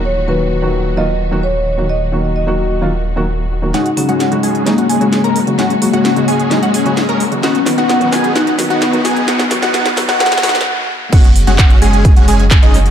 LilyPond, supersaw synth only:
\new Staff \with { instrumentName = "Supersaw synth" } { \time 4/4 \key ges \major \tempo 4 = 130 r1 | r1 | <aes des' ges'>16 r8 <aes des' ges'>8. <aes des' aes'>8. <aes des' ges'>16 <aes des' aes'>8. <aes des' bes'>16 r8 | <aes des' ges'>16 r8 <aes des' ges'>8. <aes des' aes'>8. <aes des' ges'>16 <aes des' aes'>8. <aes des' bes'>16 r8 |
<b dis' fis'>16 r8 <b dis' fis'>8. <b dis' aes'>8 <b dis' fis'>16 r8 <b dis' fis'>8. <b dis' aes'>8 | <b dis' fis'>16 r8 <b dis' fis'>16 <b dis' fis'>16 r8 <b dis' fis'>16 <b dis' fis'>16 r16 <b dis' fis'>16 r4 r16 | <aes des' ges'>16 r8 <aes des' ges'>8. <aes des' aes'>8. <aes des' ges'>16 <aes des' aes'>16 r8 <aes des' ees'>16 r8 | }